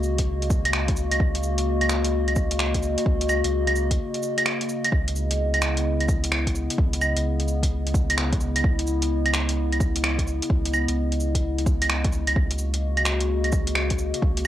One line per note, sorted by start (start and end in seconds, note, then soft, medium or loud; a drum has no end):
0.00 1.19 C#2 loud
0.00 12.32 C#3 medium
0.00 4.88 A#3 medium
0.00 4.88 F#4 medium
0.00 12.32 D#5 medium
0.00 cabasa medium
0.18 kick medium
0.18 closed hi-hat medium
0.42 closed hi-hat soft
0.50 kick loud
0.50 cabasa medium
0.65 closed hi-hat medium
0.65 claves medium
0.73 finger snap loud
0.88 kick loud
0.88 closed hi-hat soft
0.97 cabasa medium
1.11 closed hi-hat medium
1.11 claves medium
1.20 2.96 C#2 loud
1.20 kick loud
1.35 closed hi-hat soft
1.43 cabasa medium
1.58 closed hi-hat medium
1.81 closed hi-hat soft
1.81 claves medium
1.89 finger snap loud
1.89 cabasa medium
2.05 closed hi-hat medium
2.28 closed hi-hat soft
2.28 claves soft
2.36 kick loud
2.36 cabasa medium
2.51 closed hi-hat medium
2.59 finger snap loud
2.74 kick medium
2.74 closed hi-hat soft
2.83 cabasa medium
2.98 closed hi-hat medium
3.06 3.42 C#2 loud
3.06 kick loud
3.21 closed hi-hat soft
3.29 cabasa medium
3.29 claves medium
3.44 3.99 C#2 loud
3.44 closed hi-hat medium
3.67 closed hi-hat soft
3.67 claves medium
3.76 cabasa medium
3.91 kick medium
3.91 closed hi-hat medium
4.14 closed hi-hat soft
4.23 cabasa medium
4.38 closed hi-hat medium
4.38 claves medium
4.46 finger snap loud
4.61 closed hi-hat soft
4.69 cabasa medium
4.84 closed hi-hat medium
4.84 claves medium
4.92 6.68 C#2 loud
4.92 12.32 B3 medium
4.92 12.32 E4 medium
4.92 kick loud
5.08 closed hi-hat soft
5.16 cabasa medium
5.31 closed hi-hat medium
5.54 closed hi-hat soft
5.54 claves medium
5.62 finger snap loud
5.62 cabasa medium
5.77 closed hi-hat medium
6.00 closed hi-hat soft
6.00 claves soft
6.08 kick loud
6.08 cabasa medium
6.24 closed hi-hat medium
6.32 finger snap loud
6.47 kick medium
6.47 closed hi-hat soft
6.55 cabasa medium
6.70 closed hi-hat medium
6.78 7.15 C#2 loud
6.78 kick loud
6.93 closed hi-hat soft
7.01 cabasa medium
7.01 claves medium
7.16 8.63 C#2 loud
7.16 closed hi-hat medium
7.40 closed hi-hat soft
7.48 cabasa medium
7.63 kick medium
7.63 closed hi-hat medium
7.87 closed hi-hat soft
7.94 kick loud
7.94 cabasa medium
8.10 closed hi-hat medium
8.10 claves medium
8.18 finger snap loud
8.33 kick loud
8.33 closed hi-hat soft
8.41 cabasa medium
8.56 closed hi-hat medium
8.56 claves medium
8.64 10.40 C#2 loud
8.64 kick loud
8.79 closed hi-hat soft
8.87 cabasa medium
9.02 closed hi-hat medium
9.26 closed hi-hat soft
9.26 claves medium
9.34 finger snap loud
9.34 cabasa medium
9.49 closed hi-hat medium
9.72 closed hi-hat soft
9.72 claves soft
9.80 kick loud
9.80 cabasa medium
9.96 closed hi-hat medium
10.04 finger snap loud
10.19 kick medium
10.19 closed hi-hat soft
10.28 cabasa medium
10.42 closed hi-hat medium
10.50 10.86 C#2 loud
10.50 kick loud
10.65 closed hi-hat soft
10.74 cabasa medium
10.74 claves medium
10.88 12.35 C#2 loud
10.88 closed hi-hat medium
11.12 closed hi-hat soft
11.20 cabasa medium
11.35 kick medium
11.35 closed hi-hat medium
11.58 closed hi-hat soft
11.66 kick loud
11.66 cabasa medium
11.82 closed hi-hat medium
11.82 claves medium
11.90 finger snap loud
12.05 kick loud
12.05 closed hi-hat soft
12.13 cabasa medium
12.27 closed hi-hat medium
12.27 claves medium
12.36 14.12 C#2 loud
12.36 14.47 C#3 medium
12.36 14.47 A#3 medium
12.36 14.47 F#4 medium
12.36 14.47 D#5 medium
12.36 kick loud
12.51 closed hi-hat soft
12.59 cabasa medium
12.74 closed hi-hat medium
12.97 closed hi-hat soft
12.97 claves medium
13.05 finger snap loud
13.05 cabasa medium
13.21 closed hi-hat medium
13.44 closed hi-hat soft
13.44 claves soft
13.52 kick loud
13.52 cabasa medium
13.67 closed hi-hat medium
13.75 finger snap loud
13.90 kick medium
13.90 closed hi-hat soft
13.98 cabasa medium
14.14 closed hi-hat medium
14.22 14.47 C#2 loud
14.22 kick loud
14.37 closed hi-hat soft